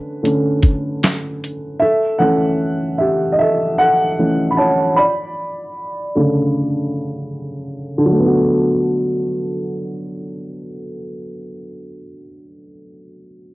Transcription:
Already playing: upright piano D3 A3 C#4 D4 B4
0.23 upright piano D3 A3 C#4, closed hi-hat
0.62 kick, closed hi-hat
1.03 snare, clap, closed hi-hat
1.44 closed hi-hat
1.79 upright piano A4 E5
2.19 upright piano E3 A3 C#4 A4 F#5
2.98 upright piano G4 E5
3.32 upright piano D#5
3.39 upright piano A4 E5
3.78 upright piano A4 F#5
4.19 upright piano E3 A3 C#4
4.51 upright piano B5
4.57 upright piano C#5 A5
4.96 upright piano D5 B5
6.15 upright piano C#3 D3 A3
7.98 upright piano D3
8.05 upright piano F#3
8.12 upright piano A3
8.19 upright piano B3
8.26 upright piano F#4

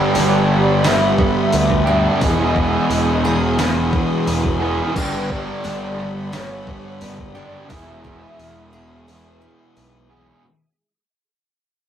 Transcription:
Already playing: distorted electric guitar G2 D3 G3, overdriven electric guitar G2 D3 G3 B3 D4 G4, string machine G4 F#5 B5, soft synth lead D5
0.15 fingered electric bass G1, distorted electric guitar G2 D3 G3, twelve-string acoustic guitar D4, open hi-hat
0.83 distorted electric guitar G2 D3 G3, twelve-string acoustic guitar B3, soft synth lead E5, snare, open hi-hat
1.18 kick
1.53 fingered electric bass D2, twelve-string acoustic guitar B3, open hi-hat
1.70 kick
1.85 overdriven electric guitar G2 D3 G3 B3 D4 G4, distorted electric guitar G3, twelve-string acoustic guitar D4
1.90 distorted electric guitar D3
2.20 fingered electric bass E1, overdriven electric guitar E2 B2 E3 B3 E4, distorted electric guitar E2 B2 E3, string machine E4 G#4 D#6, soft synth lead D#5, kick, open hi-hat
2.24 overdriven electric guitar G#4
2.56 kick
2.89 fingered electric bass E1, distorted electric guitar E2 B2 E3, open hi-hat
3.25 twelve-string acoustic guitar G#4, snare
3.58 distorted electric guitar E2 B2 E3, twelve-string acoustic guitar B3, snare, open hi-hat
3.93 kick
4.27 fingered electric bass E1, twelve-string acoustic guitar B3, open hi-hat
4.45 kick
4.60 overdriven electric guitar B2 E3 B3 E4 G#4, distorted electric guitar B2 E3
4.64 overdriven electric guitar E2
4.94 fingered electric bass G1, overdriven electric guitar G2 D3 G3 B3 D4 G4, distorted electric guitar G2 D3 G3, string machine G4 F#5 B5, soft synth lead B4, kick, crash
5.30 soft synth lead D5, kick
5.64 fingered electric bass G1, distorted electric guitar G2 D3 G3, twelve-string acoustic guitar D4, open hi-hat
5.99 snare
6.32 distorted electric guitar G2 D3 G3, twelve-string acoustic guitar B3, soft synth lead C#5, snare, open hi-hat
6.67 kick
7.01 fingered electric bass F#1, twelve-string acoustic guitar B3, soft synth lead D5, open hi-hat
7.19 kick
7.35 distorted electric guitar D3 G3, overdriven electric guitar D3 G3 B3 D4 G4, twelve-string acoustic guitar D4
7.39 overdriven electric guitar G2
7.68 fingered electric bass E1, overdriven electric guitar E2 B2 E3 B3, distorted electric guitar E2 B2, twelve-string acoustic guitar E3, soft synth lead E5, string machine E5 D#6, kick, open hi-hat
7.72 distorted electric guitar E3, overdriven electric guitar E4 G#4, string machine G#4
8.04 twelve-string acoustic guitar E3, kick
8.39 fingered electric bass E1, distorted electric guitar E2 B2 E3, open hi-hat
8.73 twelve-string acoustic guitar G#4
9.07 distorted electric guitar E2 B2 E3, twelve-string acoustic guitar B3, open hi-hat
9.42 twelve-string acoustic guitar E3
9.77 fingered electric bass B1, twelve-string acoustic guitar B3, open hi-hat
10.10 overdriven electric guitar E2 B2 E3 B3 E4 G#4, distorted electric guitar B2 E3

